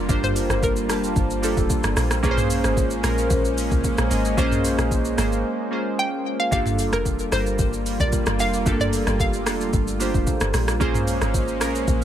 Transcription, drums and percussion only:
0.09 kick loud
0.09 shaker medium
0.23 mid tom medium
0.23 shaker medium
0.36 open hi-hat medium
0.36 shaker loud
0.50 cross-stick medium
0.50 shaker medium
0.63 kick loud
0.63 shaker medium
0.76 shaker soft
0.89 cross-stick medium
0.89 open hi-hat medium
0.89 shaker medium
1.04 shaker medium
1.16 kick loud
1.16 shaker medium
1.30 shaker medium
1.43 open hi-hat medium
1.43 shaker medium
1.57 kick medium
1.57 shaker soft
1.70 kick loud
1.70 shaker medium
1.83 cross-stick loud
1.83 shaker medium
1.97 cross-stick loud
1.97 open hi-hat medium
1.97 shaker medium
2.11 cross-stick loud
2.11 shaker medium
2.23 kick loud
2.23 shaker medium
2.37 mid tom medium
2.37 shaker medium
2.50 open hi-hat medium
2.50 shaker loud
2.64 cross-stick medium
2.64 shaker medium
2.77 kick loud
2.77 shaker medium
2.91 shaker medium
3.04 cross-stick medium
3.04 open hi-hat medium
3.04 shaker loud
3.18 shaker medium
3.30 kick loud
3.30 shaker medium
3.45 shaker medium
3.58 open hi-hat medium
3.58 shaker medium
3.71 kick loud
3.71 shaker soft
3.84 kick medium
3.84 shaker medium
3.98 cross-stick loud
3.98 shaker medium
4.11 open hi-hat medium
4.11 shaker medium
4.25 shaker medium
4.38 kick loud
4.38 shaker medium
4.51 mid tom medium
4.51 shaker medium
4.65 open hi-hat medium
4.65 shaker loud
4.78 cross-stick medium
4.78 shaker medium
4.91 kick loud
4.91 shaker medium
5.05 shaker soft
5.18 cross-stick medium
5.18 open hi-hat medium
5.18 shaker medium
5.32 shaker medium
6.52 kick loud
6.52 shaker medium
6.66 mid tom medium
6.66 shaker medium
6.79 open hi-hat medium
6.79 shaker medium
6.93 cross-stick medium
6.93 shaker medium
7.05 kick loud
7.05 shaker medium
7.19 shaker soft
7.32 cross-stick medium
7.32 open hi-hat medium
7.32 shaker medium
7.46 shaker medium
7.59 kick loud
7.59 shaker medium
7.73 shaker medium
7.86 open hi-hat medium
7.86 shaker medium
8.00 kick medium
8.00 shaker soft
8.12 kick loud
8.12 shaker medium
8.26 cross-stick loud
8.26 shaker medium
8.39 open hi-hat medium
8.39 shaker medium
8.54 shaker medium
8.66 kick loud
8.66 shaker medium
8.80 mid tom medium
8.80 shaker medium
8.93 open hi-hat medium
8.93 shaker loud
9.07 cross-stick medium
9.07 shaker medium
9.20 kick loud
9.20 shaker medium
9.33 shaker soft
9.46 cross-stick loud
9.46 open hi-hat medium
9.46 shaker medium
9.61 shaker medium
9.73 kick loud
9.73 shaker medium
9.88 shaker medium
10.00 open hi-hat medium
10.00 shaker loud
10.14 kick medium
10.14 shaker soft
10.27 kick medium
10.27 shaker medium
10.40 cross-stick loud
10.40 shaker medium
10.54 cross-stick loud
10.54 open hi-hat medium
10.54 shaker medium
10.68 cross-stick loud
10.68 shaker medium
10.81 kick loud
10.81 shaker medium
10.94 mid tom medium
10.94 shaker medium
11.07 open hi-hat medium
11.07 shaker loud
11.21 cross-stick medium
11.21 shaker medium
11.34 kick loud
11.34 shaker medium
11.48 shaker medium
11.61 cross-stick loud
11.61 open hi-hat medium
11.61 shaker medium
11.75 shaker medium
11.88 kick loud
11.88 shaker medium

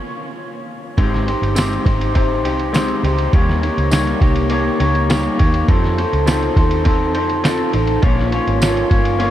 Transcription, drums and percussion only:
0.98 kick loud
0.98 ride medium
1.14 snare soft
1.28 ride medium
1.43 ride soft
1.56 snare loud
1.56 ride medium
1.56 tambourine loud
1.73 ride soft
1.86 kick medium
1.86 ride medium
2.01 ride soft
2.15 kick medium
2.15 ride medium
2.45 ride medium
2.60 ride soft
2.74 snare loud
2.74 ride medium
2.74 tambourine medium
2.88 ride soft
3.04 ride medium
3.19 ride medium
3.33 kick loud
3.33 ride medium
3.49 snare soft
3.63 ride medium
3.78 ride soft
3.92 snare loud
3.92 ride medium
3.92 tambourine medium
4.07 ride soft
4.21 kick medium
4.21 ride medium
4.36 ride soft
4.50 ride medium
4.80 ride medium
4.95 ride soft
5.10 snare loud
5.10 ride medium
5.10 tambourine medium
5.23 ride soft
5.39 kick medium
5.39 ride medium
5.54 ride soft
5.68 kick loud
5.68 ride medium
5.84 snare soft
5.98 ride medium
6.13 ride soft
6.27 snare loud
6.27 ride medium
6.27 tambourine medium
6.43 ride soft
6.56 kick loud
6.56 ride medium
6.71 ride soft
6.85 kick medium
6.85 ride medium
7.15 ride medium
7.30 ride soft
7.44 snare loud
7.44 ride medium
7.44 tambourine medium
7.57 ride soft
7.73 ride medium
7.87 ride soft
8.03 kick loud
8.03 ride medium
8.19 snare soft
8.32 ride medium
8.47 ride soft
8.62 snare loud
8.62 ride medium
8.62 tambourine loud
8.77 ride soft
8.91 kick loud
8.91 ride medium
9.05 ride soft
9.20 ride medium

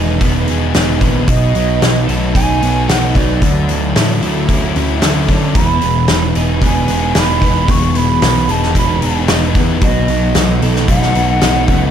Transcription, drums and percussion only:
0.21 kick medium
0.21 open hi-hat medium
0.48 open hi-hat soft
0.74 snare loud
0.74 open hi-hat medium
1.01 kick medium
1.01 open hi-hat soft
1.28 kick loud
1.28 open hi-hat medium
1.55 open hi-hat soft
1.82 snare loud
1.82 open hi-hat medium
2.09 open hi-hat medium
2.35 kick medium
2.35 open hi-hat medium
2.62 open hi-hat medium
2.89 snare loud
2.89 open hi-hat medium
3.15 kick medium
3.15 open hi-hat medium
3.42 kick loud
3.42 open hi-hat medium
3.69 open hi-hat medium
3.96 snare loud
3.96 open hi-hat medium
4.22 open hi-hat medium
4.49 kick medium
4.49 open hi-hat medium
4.76 open hi-hat medium
5.02 snare loud
5.02 open hi-hat medium
5.28 kick medium
5.28 open hi-hat soft
5.55 kick loud
5.55 open hi-hat medium
5.81 open hi-hat soft
6.08 snare loud
6.08 open hi-hat medium
6.35 open hi-hat medium
6.61 kick medium
6.61 open hi-hat medium
6.88 open hi-hat medium
7.15 snare loud
7.15 open hi-hat medium
7.42 kick medium
7.42 open hi-hat medium
7.68 kick loud
7.68 open hi-hat medium
7.95 open hi-hat medium
8.22 snare loud
8.22 open hi-hat medium
8.49 open hi-hat medium
8.63 snare soft
8.75 kick medium
8.75 open hi-hat medium
9.02 open hi-hat medium
9.28 snare loud
9.28 open hi-hat medium
9.55 kick medium
9.55 open hi-hat medium
9.81 kick loud
9.81 open hi-hat medium
10.08 open hi-hat soft
10.35 snare loud
10.35 open hi-hat medium
10.62 open hi-hat medium
10.76 snare soft
10.88 kick medium
10.88 open hi-hat medium
11.02 snare soft
11.15 open hi-hat medium
11.41 snare loud
11.41 open hi-hat medium
11.68 kick medium
11.68 open hi-hat medium

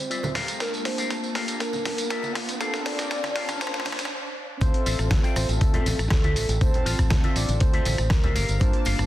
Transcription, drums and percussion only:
0.11 closed hi-hat medium
0.11 tambourine medium
0.23 tambourine soft
0.23 high conga loud
0.23 low conga loud
0.35 snare medium
0.35 open hi-hat loud
0.35 low conga medium
0.48 closed hi-hat medium
0.48 tambourine medium
0.60 snare medium
0.60 closed hi-hat soft
0.60 tambourine soft
0.74 tambourine soft
0.85 snare medium
0.85 open hi-hat loud
0.98 closed hi-hat medium
0.98 tambourine medium
1.10 snare medium
1.10 closed hi-hat soft
1.10 tambourine soft
1.24 tambourine soft
1.35 snare medium
1.35 open hi-hat loud
1.48 closed hi-hat medium
1.48 tambourine medium
1.60 snare medium
1.60 closed hi-hat medium
1.60 tambourine medium
1.73 tambourine soft
1.73 high conga medium
1.73 low conga medium
1.85 snare medium
1.85 open hi-hat loud
1.85 low conga medium
1.98 closed hi-hat medium
1.98 tambourine medium
2.10 snare medium
2.10 closed hi-hat medium
2.10 tambourine medium
2.23 tambourine soft
2.23 high conga loud
2.35 snare medium
2.35 open hi-hat loud
2.49 closed hi-hat medium
2.49 tambourine medium
2.61 snare medium
2.61 closed hi-hat medium
2.61 tambourine medium
2.74 snare medium
2.74 tambourine soft
2.86 snare medium
2.86 open hi-hat loud
2.99 snare medium
2.99 closed hi-hat medium
2.99 tambourine medium
3.11 snare loud
3.11 closed hi-hat soft
3.11 tambourine medium
3.23 snare medium
3.23 tambourine soft
3.23 high conga medium
3.36 snare loud
3.36 open hi-hat loud
3.47 snare medium
3.47 closed hi-hat medium
3.47 tambourine medium
3.47 high conga medium
3.61 snare loud
3.61 closed hi-hat soft
3.61 tambourine medium
3.67 snare medium
3.74 snare medium
3.74 tambourine soft
3.80 snare medium
3.85 snare loud
3.85 open hi-hat loud
3.85 high conga medium
3.92 snare loud
3.99 snare loud
3.99 closed hi-hat medium
3.99 tambourine medium
4.05 snare loud
4.61 kick loud
4.61 closed hi-hat medium
4.61 tambourine medium
4.61 tambourine soft
4.74 closed hi-hat soft
4.86 open hi-hat loud
4.86 tambourine medium
4.99 cross-stick medium
4.99 closed hi-hat soft
4.99 tambourine soft
5.11 kick loud
5.11 snare loud
5.11 closed hi-hat medium
5.11 tambourine soft
5.24 closed hi-hat soft
5.24 tambourine soft
5.36 cross-stick medium
5.36 open hi-hat loud
5.36 tambourine medium
5.49 closed hi-hat soft
5.49 tambourine soft
5.61 kick loud
5.61 closed hi-hat medium
5.61 tambourine soft
5.74 closed hi-hat soft
5.74 high conga medium
5.74 low conga loud
5.86 open hi-hat loud
5.86 tambourine loud
5.86 tambourine medium
5.86 low conga loud
5.99 cross-stick medium
5.99 closed hi-hat soft
5.99 tambourine soft
6.11 kick loud
6.11 snare loud
6.11 closed hi-hat medium
6.11 tambourine soft
6.11 tambourine medium
6.24 closed hi-hat soft
6.24 high conga medium
6.36 open hi-hat loud
6.36 tambourine medium
6.36 tambourine loud
6.49 closed hi-hat soft
6.49 tambourine soft
6.61 kick loud
6.61 closed hi-hat medium
6.61 tambourine soft
6.61 tambourine medium
6.74 closed hi-hat soft
6.74 low conga medium
6.86 open hi-hat loud
6.86 tambourine medium
6.99 kick medium
6.99 cross-stick medium
6.99 closed hi-hat soft
6.99 tambourine soft
7.10 kick loud
7.10 snare loud
7.10 closed hi-hat medium
7.10 tambourine soft
7.10 tambourine medium
7.24 closed hi-hat soft
7.24 tambourine soft
7.24 high conga medium
7.36 open hi-hat loud
7.36 tambourine medium
7.49 closed hi-hat soft
7.49 tambourine soft
7.49 high conga medium
7.60 kick loud
7.60 closed hi-hat medium
7.60 tambourine soft
7.74 closed hi-hat soft
7.85 open hi-hat loud
7.85 tambourine medium
7.85 tambourine loud
7.85 high conga medium
7.98 cross-stick medium
7.98 closed hi-hat soft
7.98 tambourine soft
8.10 kick loud
8.10 snare loud
8.10 closed hi-hat medium
8.10 tambourine medium
8.10 tambourine soft
8.24 closed hi-hat soft
8.24 high conga medium
8.24 low conga loud
8.36 open hi-hat loud
8.36 tambourine loud
8.36 tambourine medium
8.49 closed hi-hat soft
8.49 tambourine soft
8.60 kick loud
8.60 closed hi-hat medium
8.60 tambourine medium
8.61 tambourine soft
8.73 closed hi-hat soft
8.85 open hi-hat loud
8.85 tambourine loud
8.85 tambourine medium
8.98 cross-stick medium
8.98 closed hi-hat soft
8.98 tambourine soft

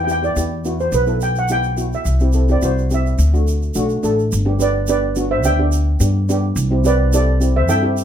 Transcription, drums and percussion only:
0.09 shaker medium
0.24 shaker soft
0.36 shaker medium
0.65 shaker medium
0.80 shaker soft
0.92 shaker medium
1.07 shaker soft
1.21 shaker medium
1.36 shaker soft
1.48 shaker medium
1.63 shaker soft
1.77 shaker medium
1.93 shaker soft
2.05 shaker medium
2.20 shaker soft
2.33 shaker medium
2.48 shaker soft
2.62 shaker medium
2.78 shaker soft
2.90 shaker medium
3.06 shaker soft
3.19 shaker medium
3.34 shaker soft
3.47 shaker medium
3.62 shaker soft
3.74 shaker medium
3.89 shaker soft
4.04 shaker medium
4.19 shaker soft
4.32 shaker medium
4.60 shaker medium
4.87 shaker medium
5.16 shaker medium
5.44 shaker loud
5.72 shaker medium
6.00 shaker medium
6.29 shaker medium
6.56 shaker loud
6.84 shaker medium
7.13 shaker medium
7.41 shaker medium
7.69 shaker medium
7.97 shaker medium

